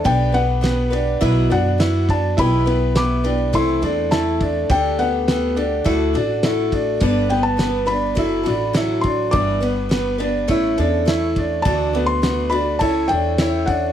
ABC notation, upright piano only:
X:1
M:4/4
L:1/8
Q:1/4=103
K:Dmix
V:1 name="Upright piano"
D B, B, D E D E D | E B, B, D E D E D | D B, B, D E D E D | D B, B, D E D E D |
D B, B, D E D E D | D B, B, D E D E D |]